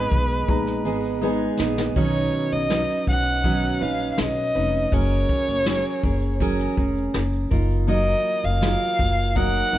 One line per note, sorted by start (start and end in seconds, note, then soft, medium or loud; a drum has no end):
0.00 0.48 G#3 medium
0.00 0.85 G#3 medium
0.00 0.86 B3 medium
0.00 0.85 D#4 medium
0.00 0.84 G#4 medium
0.00 1.23 B4 loud
0.12 0.42 B1 medium
0.12 kick medium
0.30 shaker medium
0.48 0.85 A#1 medium
0.48 1.18 G#3 medium
0.48 1.19 B3 medium
0.48 1.19 D#4 medium
0.48 1.19 A#5 medium
0.48 kick medium
0.48 shaker medium
0.67 snare soft
0.67 shaker medium
0.85 1.46 G#1 medium
0.85 1.20 G#3 medium
0.85 1.21 B3 medium
0.85 1.22 D#4 medium
0.85 1.22 G#4 medium
0.85 shaker medium
1.04 shaker medium
1.21 1.59 G#3 medium
1.21 1.92 G#3 medium
1.21 1.93 B3 medium
1.21 1.59 B3 medium
1.21 1.58 D#4 medium
1.21 1.93 D#4 medium
1.21 1.58 G#4 medium
1.21 1.93 B4 medium
1.59 1.90 A#1 loud
1.59 1.96 G#3 soft
1.59 1.97 B3 medium
1.59 1.96 D#4 medium
1.59 1.96 G#4 medium
1.59 snare loud
1.78 snare medium
1.96 2.27 B1 medium
1.96 2.70 B2 medium
1.96 2.70 D#3 medium
1.96 2.70 F#3 medium
1.96 2.70 C#4 medium
1.96 2.70 D#4 medium
1.96 2.71 B4 medium
1.96 2.54 C#5 loud
1.96 kick loud
1.96 shaker medium
2.15 shaker soft
2.52 2.82 B1 medium
2.52 3.08 D#5 medium
2.52 shaker medium
2.70 3.44 F#3 medium
2.70 3.44 C#4 medium
2.70 3.44 D#4 medium
2.70 3.44 B4 medium
2.70 snare loud
2.70 shaker medium
2.89 shaker soft
3.07 3.68 B1 medium
3.07 3.84 F#5 medium
3.07 kick medium
3.25 shaker medium
3.44 3.81 B2 medium
3.44 3.81 D#3 medium
3.44 3.82 F#3 medium
3.44 3.81 C#4 medium
3.44 3.80 D#4 medium
3.44 3.79 B4 medium
3.44 kick medium
3.44 shaker medium
3.62 shaker soft
3.81 4.12 A#1 medium
3.81 4.56 F#3 soft
3.81 4.56 C#4 soft
3.81 4.54 D#4 soft
3.81 4.54 B4 medium
3.81 4.11 F5 medium
4.00 shaker soft
4.12 4.21 F5 medium
4.18 4.49 B1 medium
4.18 4.95 D#5 medium
4.18 snare loud
4.18 shaker medium
4.37 shaker medium
4.55 4.86 F1 medium
4.55 4.91 F#3 soft
4.55 4.91 C#4 soft
4.55 4.93 D#4 soft
4.55 4.92 B4 medium
4.74 shaker soft
4.92 5.23 F#1 loud
4.92 5.66 F#3 medium
4.92 5.66 C#4 medium
4.92 5.67 G#4 medium
4.92 5.68 A#4 medium
4.92 6.41 C#5 medium
4.92 kick medium
4.92 shaker medium
5.11 shaker soft
5.29 kick medium
5.29 shaker soft
5.47 5.78 F#1 medium
5.47 shaker medium
5.66 6.03 F#3 medium
5.66 6.04 C#4 medium
5.66 6.03 G#4 medium
5.66 6.02 A#4 medium
5.66 snare loud
5.66 shaker medium
5.85 shaker soft
6.03 6.64 F#1 medium
6.03 6.40 C#4 soft
6.03 6.40 G#4 soft
6.03 6.40 A#4 medium
6.03 kick medium
6.21 shaker medium
6.40 6.77 F#3 medium
6.40 6.78 C#4 medium
6.40 6.77 G#4 medium
6.40 6.76 A#4 medium
6.40 kick medium
6.40 shaker medium
6.59 snare soft
6.59 shaker medium
6.77 7.08 F1 medium
6.77 7.52 C#4 soft
6.77 7.51 G#4 medium
6.77 7.50 A#4 medium
6.77 kick medium
6.96 shaker medium
7.14 7.45 F#1 medium
7.14 snare loud
7.14 shaker medium
7.33 shaker medium
7.51 8.12 F#1 loud
7.51 7.87 D#4 soft
7.51 7.87 F4 soft
7.51 7.88 A#4 medium
7.51 kick loud
7.51 shaker medium
7.70 shaker soft
7.87 8.60 F#3 medium
7.87 9.28 A#3 medium
7.87 8.61 D#4 medium
7.87 9.28 F4 medium
7.87 8.61 F4 medium
7.87 9.29 F#4 medium
7.87 8.62 A#4 medium
7.87 8.46 D#5 loud
7.87 9.29 D#5 medium
7.87 shaker medium
8.07 shaker soft
8.44 8.74 F#1 medium
8.44 9.38 F5 loud
8.44 shaker medium
8.61 9.34 F#3 medium
8.61 9.36 D#4 medium
8.61 9.36 F4 medium
8.61 9.36 A#4 medium
8.61 snare loud
8.61 shaker medium
8.81 shaker soft
8.98 9.60 F#1 loud
8.98 kick medium
8.98 shaker soft
9.17 shaker medium
9.35 9.73 F#3 medium
9.35 9.78 A#3 medium
9.35 9.78 D#4 medium
9.35 9.73 D#4 medium
9.35 9.78 F#4 medium
9.35 9.71 A#4 medium
9.35 9.78 D#5 medium
9.35 9.78 F#5 loud
9.35 kick medium
9.35 shaker medium
9.54 shaker medium
9.72 9.78 F#1 medium
9.72 9.78 D#4 soft
9.72 9.78 A#4 soft
9.72 shaker medium